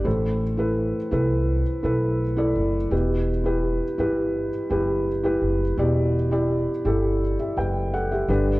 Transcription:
<<
  \new Staff \with { instrumentName = "Felt piano" } { \time 4/4 \key e \minor \tempo 4 = 84 << { r1 | r1 | r2 r16 <g' e''>16 <b' g''>8 <a' fis''>16 <g' e''>8 r16 | } \\ { <e' a' c''>8 r16 <e' a' b'>8 r16 <e' a' b'>8. r16 <e' a' b'>8 r16 <e' a' d''>8 r16 | <e' g' b'>8 r16 <e' g' b'>8 r16 <e' g' b'>8. r16 <e' g' b'>8 r16 <e' g' b'>8 r16 | <e' g' d''>8 r16 <e' g' d''>8 r16 <e' g' a'>8. r4 r16 <d' g' b'>8 | } >> }
  \new Staff \with { instrumentName = "Felt piano" } { \clef bass \time 4/4 \key e \minor <a, e>4. r2 r8 | b,4. r2 r8 | b,4. r2 <g, d>8 | }
  \new Staff \with { instrumentName = "Upright bass" } { \clef bass \time 4/4 \key e \minor a,,4~ a,,16 r16 c,8. r16 b,,4 fis,,8 | e,,4~ e,,16 r16 g,,8. r16 fis,,4 fis,,8 | e,,4~ e,,16 r16 g,,8. r16 fis,,4 g,,8 | }
>>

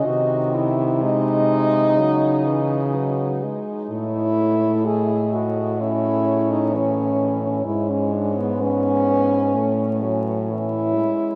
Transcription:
<<
  \new Staff \with { instrumentName = "French horn" } { \time 4/4 \key a \lydian \tempo 4 = 63 dis''4 dis''8 dis''8 cis''8 b'4 r8 | cis''4 dis''4 cis''2 | cis''4 b'8 b'8 cis''8 r8 cis''4 | }
  \new Staff \with { instrumentName = "French horn" } { \time 4/4 \key a \lydian fis'8 e'8 dis'2~ dis'8 r8 | e'4 gis'8 fis'8 e'8. dis'16 cis'8. cis'16 | e'16 cis'16 d'16 b16 cis'4.~ cis'16 r16 e'4 | }
  \new Staff \with { instrumentName = "French horn" } { \clef bass \time 4/4 \key a \lydian dis4 gis4 fis8 e8 fis8 gis8 | a4. r8 cis'4 e4 | gis4 b4 a8 fis8 e8 gis8 | }
  \new Staff \with { instrumentName = "French horn" } { \clef bass \time 4/4 \key a \lydian bis,2 cis4. r8 | a,1 | gis,2 a,4. r8 | }
>>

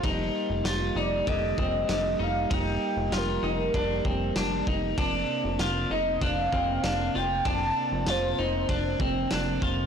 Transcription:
<<
  \new Staff \with { instrumentName = "Soft synth lead" } { \time 4/4 \key ees \lydian \tempo 4 = 97 r4. d''8 ees''4. f''8 | g''4 bes'2 r4 | r4. ees''8 f''4. g''8 | a''4 c''2 r4 | }
  \new Staff \with { instrumentName = "Clean electric guitar" } { \time 4/4 \key ees \lydian ees'4 f'8 ees'8 d8 c'8 d8 ees'8 | ees'4 f'8 ees'8 d'8 c'8 d'8 ees'8 | d'4 f'8 ees'8 d'8 c'8 d'8 f'8 | d'4 f'8 ees'8 d'8 c'8 d'8 f'8 | }
  \new Staff \with { instrumentName = "Tonewheel organ" } { \time 4/4 \key ees \lydian << { <g g'>1~ | <g g'>1 | <c c'>1~ | <c c'>1 | } \\ { bes1~ | bes1~ | bes1~ | bes1 | } >> }
  \new Staff \with { instrumentName = "Analog synth bass" } { \clef bass \time 4/4 \key ees \lydian f,,8 r16 f,,16 f,,8 f,,8 f,,8 f,,8 f,,8 f,,8 | f,,8 r16 f,,16 f,,8 f,,8 f,,8 f,,8 f,,8 f,,8 | f,,8 r16 f,,16 f,,8 f,,8 f,,8 f,,8 f,,8 f,,8 | f,,8 r16 f,,16 f,,8 f,,8 f,,8 f,,8 f,,8 f,,8 | }
  \new DrumStaff \with { instrumentName = "Drums" } \drummode { \time 4/4 <bd cymr>4 <cymr sn tamb>4 <bd cymr>8 bd8 <cymr sn tamb>4 | <bd cymr>4 <cymr sn tamb>4 <bd cymr>8 bd8 <cymr sn tamb>8 bd8 | <bd cymr>4 <cymr sn tamb>4 <bd cymr>8 bd8 <cymr sn tamb>4 | <bd cymr>4 <cymr sn tamb>4 <bd cymr>8 bd8 <cymr sn tamb>8 bd8 | }
>>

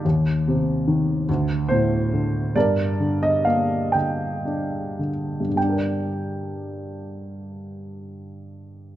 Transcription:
<<
  \new Staff \with { instrumentName = "Grand piano" } { \time 6/8 \key g \minor \tempo 4. = 41 << { r2 c''4 | d''8. ees''16 f''8 g''4 r8 | g''2. | } \\ { r2. | bes'4. r4. | r2. | } >> }
  \new Staff \with { instrumentName = "Grand piano" } { \clef bass \time 6/8 \key g \minor ees,8 c8 ees8 d,8 a,8 d8 | g,8 d8 bes8 d8 d'8 d8 | <g, d g d' bes' d''>2. | }
>>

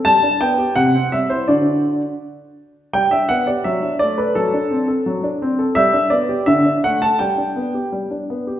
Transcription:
\new Staff \with { instrumentName = "Grand piano" } { \time 2/4 \key g \major \tempo 4 = 83 << { a''8 g''8 fis''8 e''16 c''16 | d''4 r4 | g''16 e''16 fis''16 d''16 e''8 d''16 b'16 | a'4. r8 |
e''8 d''8 e''8 fis''16 a''16 | g''4. r8 | } \\ { g16 d'16 b16 g'16 c16 c'16 g16 e'16 | <d d' fis'>4 r4 | g16 d'16 b16 g'16 fis16 d'16 a16 a'16 | fis16 d'16 c'16 a'16 fis16 d'16 c'16 a'16 |
g16 d'16 b16 g'16 d16 d'16 a16 a'16 | g16 d'16 b16 g'16 g16 d'16 b16 g'16 | } >> }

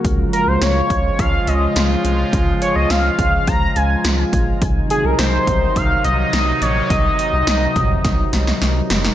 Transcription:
<<
  \new Staff \with { instrumentName = "Analog synth lead" } { \time 4/4 \key des \major \tempo 4 = 105 r8 bes'16 c''16 des''4 f''8 ees''8 r4 | r8 des''16 ees''16 f''4 bes''8 aes''8 r4 | r8 aes'16 bes'16 c''4 f''8 ees''4 des''8 | ees''2. r4 | }
  \new Staff \with { instrumentName = "Analog synth pad" } { \clef bass \time 4/4 \key des \major <des f aes f'>1~ | <des f aes f'>1 | <c ees ges ees'>1~ | <c ees ges ees'>1 | }
  \new Staff \with { instrumentName = "Analog synth bass" } { \clef bass \time 4/4 \key des \major des,8 r16 des,16 des,8 des,8 des,8 des,8 des,8 c,8 | des,8 r16 des,16 des,8 des,8 des,8 des,8 des,8 bes,,8 | c,8 r16 c,16 c,8 c,8 c,8 c,8 c,8 bes,,8 | c,8 r16 c,16 c,8 c,8 c,8 c,8 c,8 ges,,8 | }
  \new DrumStaff \with { instrumentName = "Drums" } \drummode { \time 4/4 <hh bd>8 hh8 <hh sn>8 <hh bd>8 <hh bd>8 hh8 <hh sn>8 hh8 | <hh bd>8 hh8 <hh sn>8 <hh bd>8 <hh bd>8 hh8 <hh sn>8 <hh bd>8 | <hh bd>8 hh8 <hh sn>8 <hh bd>8 <hh bd>8 hh8 <hh sn>8 hh8 | <hh bd>8 hh8 <hh sn>8 <hh bd toml>8 <hh bd sn>8 <hh sn>16 sn16 <hh sn>8 <hh sn>16 sn16 | }
>>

